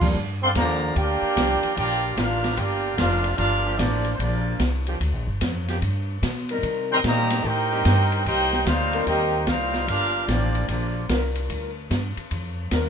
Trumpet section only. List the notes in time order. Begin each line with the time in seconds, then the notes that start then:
0.43 A4 D5 F5 C6
0.56 G4 D5 F5 A#5
0.97 F4 A#4 D5 G5
1.78 F4 A#4 D5 G5
2.18 D4 G4 A#4 F5
2.58 F4 A#4 D5 G5
2.97 D4 G4 A#4 F5
3.38 D4 G4 A#4 F5
3.79 A#3 F4 G4 D5
4.15 C5
4.21 A#3 F4 G4 D5
6.92 A#4 D#5 G5 C6
7.06 G4 C5 D#5 A#5
7.46 D#4 A#4 C5 G5
8.26 D#4 A#4 C5 G5
8.67 D#4 A#4 C5 F5
9.06 D#4 A#4 C5 G5
9.47 D#4 A#4 C5 F5
9.88 D4 G4 A#4 F5
10.27 A#3 F4 G4 D5
10.69 A#3 F4 G4 D5